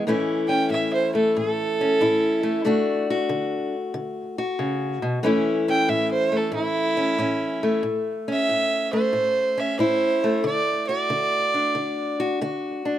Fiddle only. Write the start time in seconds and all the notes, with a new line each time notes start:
0.48 G5
0.71 E5
0.93 C5
1.15 A4
1.37 A4
5.69 G5
5.89 E5
6.11 C5
6.36 A4
6.54 E4
8.32 E5
8.93 C5
9.59 E5
9.80 C5
10.46 D5
10.87 D5